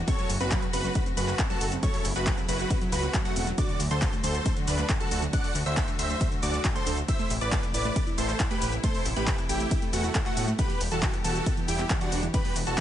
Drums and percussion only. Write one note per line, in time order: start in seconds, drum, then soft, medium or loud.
0.08 kick loud
0.08 closed hi-hat medium
0.08 ride medium
0.08 shaker soft
0.19 closed hi-hat medium
0.19 shaker soft
0.30 open hi-hat loud
0.30 shaker medium
0.41 closed hi-hat medium
0.41 shaker soft
0.51 kick loud
0.51 clap loud
0.51 closed hi-hat medium
0.51 ride medium
0.51 shaker soft
0.62 closed hi-hat medium
0.62 shaker soft
0.73 open hi-hat loud
0.73 shaker medium
0.84 shaker soft
0.95 kick loud
0.95 closed hi-hat medium
0.95 ride medium
0.95 shaker soft
1.06 closed hi-hat medium
1.06 shaker soft
1.17 open hi-hat loud
1.17 shaker medium
1.28 clap soft
1.28 shaker soft
1.39 kick loud
1.39 clap loud
1.39 closed hi-hat medium
1.39 ride medium
1.39 shaker soft
1.50 closed hi-hat medium
1.50 shaker soft
1.61 open hi-hat loud
1.61 shaker medium
1.72 closed hi-hat medium
1.72 shaker soft
1.83 kick loud
1.83 closed hi-hat medium
1.83 ride medium
1.83 shaker soft
1.94 open hi-hat medium
1.94 shaker soft
2.05 open hi-hat loud
2.05 shaker medium
2.16 closed hi-hat medium
2.16 shaker soft
2.27 kick loud
2.27 clap loud
2.27 closed hi-hat medium
2.27 ride medium
2.27 shaker soft
2.38 closed hi-hat soft
2.38 shaker soft
2.49 open hi-hat loud
2.49 shaker medium
2.60 closed hi-hat medium
2.60 shaker soft
2.70 kick loud
2.70 closed hi-hat medium
2.70 ride medium
2.70 shaker soft
2.81 closed hi-hat medium
2.81 shaker soft
2.92 open hi-hat loud
2.92 shaker medium
3.03 closed hi-hat medium
3.03 shaker soft
3.14 kick loud
3.14 clap loud
3.14 closed hi-hat medium
3.14 ride medium
3.14 shaker soft
3.25 closed hi-hat medium
3.25 shaker soft
3.36 open hi-hat loud
3.36 shaker medium
3.47 closed hi-hat soft
3.47 shaker soft
3.58 kick loud
3.58 closed hi-hat medium
3.58 ride medium
3.58 shaker soft
3.69 closed hi-hat medium
3.69 shaker soft
3.80 open hi-hat loud
3.80 shaker medium
3.91 closed hi-hat medium
3.91 shaker soft
4.02 kick loud
4.02 clap loud
4.02 closed hi-hat medium
4.02 ride medium
4.02 shaker soft
4.13 closed hi-hat medium
4.13 shaker soft
4.24 open hi-hat loud
4.24 shaker medium
4.35 closed hi-hat medium
4.35 shaker soft
4.46 kick loud
4.46 closed hi-hat medium
4.46 ride medium
4.46 shaker soft
4.57 closed hi-hat medium
4.57 shaker soft
4.68 open hi-hat loud
4.68 shaker medium
4.79 clap soft
4.79 closed hi-hat medium
4.79 shaker soft
4.89 kick loud
4.89 clap loud
4.89 closed hi-hat medium
4.89 ride medium
4.89 shaker soft
5.00 closed hi-hat medium
5.00 shaker soft
5.11 open hi-hat loud
5.11 shaker medium
5.22 closed hi-hat soft
5.22 shaker soft
5.33 kick loud
5.33 closed hi-hat medium
5.33 ride medium
5.33 shaker soft
5.44 open hi-hat medium
5.44 shaker soft
5.55 open hi-hat loud
5.55 shaker medium
5.66 closed hi-hat medium
5.66 shaker soft
5.77 kick loud
5.77 clap loud
5.77 closed hi-hat medium
5.77 ride medium
5.77 shaker soft
5.88 closed hi-hat medium
5.88 shaker soft
5.99 open hi-hat loud
5.99 shaker medium
6.10 shaker soft
6.21 kick loud
6.21 closed hi-hat medium
6.21 ride medium
6.21 shaker soft
6.32 closed hi-hat medium
6.32 shaker soft
6.43 open hi-hat loud
6.43 shaker medium
6.54 closed hi-hat medium
6.54 shaker soft
6.65 kick loud
6.65 clap loud
6.65 closed hi-hat medium
6.65 ride medium
6.65 shaker soft
6.76 closed hi-hat medium
6.76 shaker soft
6.87 open hi-hat loud
6.87 shaker medium
6.98 closed hi-hat medium
6.98 shaker soft
7.08 kick loud
7.08 closed hi-hat loud
7.08 ride medium
7.08 shaker soft
7.19 closed hi-hat medium
7.19 shaker soft
7.30 open hi-hat loud
7.30 shaker medium
7.41 closed hi-hat medium
7.41 shaker soft
7.52 kick loud
7.52 clap loud
7.52 closed hi-hat medium
7.52 ride medium
7.52 shaker soft
7.63 closed hi-hat medium
7.63 shaker soft
7.74 open hi-hat loud
7.74 shaker medium
7.85 shaker soft
7.96 kick loud
7.96 closed hi-hat loud
7.96 ride medium
7.96 shaker soft
8.07 closed hi-hat medium
8.07 shaker soft
8.18 open hi-hat loud
8.18 shaker medium
8.29 clap soft
8.29 closed hi-hat medium
8.29 shaker soft
8.40 kick loud
8.40 clap loud
8.40 closed hi-hat loud
8.40 ride medium
8.40 shaker soft
8.51 closed hi-hat medium
8.51 shaker soft
8.62 open hi-hat loud
8.62 shaker medium
8.73 closed hi-hat medium
8.73 shaker soft
8.84 kick loud
8.84 closed hi-hat loud
8.84 ride medium
8.84 shaker soft
8.95 open hi-hat medium
8.95 shaker soft
9.05 open hi-hat loud
9.05 shaker medium
9.16 closed hi-hat medium
9.16 shaker soft
9.27 kick loud
9.27 clap loud
9.27 closed hi-hat loud
9.27 ride medium
9.27 shaker soft
9.38 closed hi-hat medium
9.38 shaker soft
9.49 open hi-hat loud
9.49 shaker medium
9.60 closed hi-hat medium
9.60 shaker soft
9.71 kick loud
9.71 closed hi-hat loud
9.71 ride medium
9.71 shaker soft
9.82 closed hi-hat medium
9.82 shaker soft
9.93 open hi-hat loud
9.93 shaker medium
10.04 closed hi-hat medium
10.04 shaker soft
10.15 kick loud
10.15 clap loud
10.15 closed hi-hat loud
10.15 ride medium
10.15 shaker soft
10.26 clap soft
10.26 closed hi-hat medium
10.26 shaker soft
10.37 open hi-hat loud
10.37 shaker medium
10.48 shaker soft
10.59 kick loud
10.59 closed hi-hat loud
10.59 ride medium
10.59 shaker soft
10.70 closed hi-hat medium
10.70 shaker soft
10.81 open hi-hat loud
10.81 shaker medium
10.92 shaker soft
11.03 kick loud
11.03 clap loud
11.03 closed hi-hat loud
11.03 ride medium
11.03 shaker soft
11.14 closed hi-hat medium
11.14 shaker soft
11.25 open hi-hat loud
11.25 shaker medium
11.35 closed hi-hat medium
11.35 shaker soft
11.46 kick loud
11.46 closed hi-hat loud
11.46 ride medium
11.46 shaker soft
11.57 closed hi-hat medium
11.57 shaker soft
11.68 open hi-hat loud
11.68 shaker medium
11.79 clap soft
11.79 closed hi-hat medium
11.79 shaker soft
11.90 kick loud
11.90 clap loud
11.90 closed hi-hat loud
11.90 ride medium
11.90 shaker soft
12.01 closed hi-hat medium
12.01 shaker soft
12.12 open hi-hat loud
12.12 shaker medium
12.23 closed hi-hat medium
12.23 shaker soft
12.34 kick loud
12.34 closed hi-hat loud
12.34 ride medium
12.34 shaker soft
12.45 open hi-hat medium
12.45 shaker soft
12.56 open hi-hat loud
12.56 shaker medium
12.67 closed hi-hat medium
12.67 shaker soft